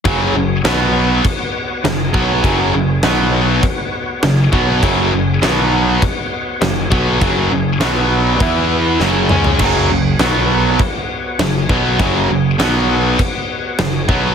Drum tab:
CC |x---x---x---x---|x---x---x---x---|x---x---x---x---|x---x---x-------|
SD |----o-------o---|----o-------o---|----o-------o---|----o-------o---|
T2 |----------------|----------------|----------------|--------------o-|
FT |----------------|----------------|----------------|---------------o|
BD |o-------o-----o-|o-------o-----o-|o-------o-----o-|o-------o-------|

CC |x---x---x---x---|x---x---x---x---|
SD |----o-------o---|----o-------o---|
T2 |----------------|----------------|
FT |----------------|----------------|
BD |o-------o-----o-|o-------o-----o-|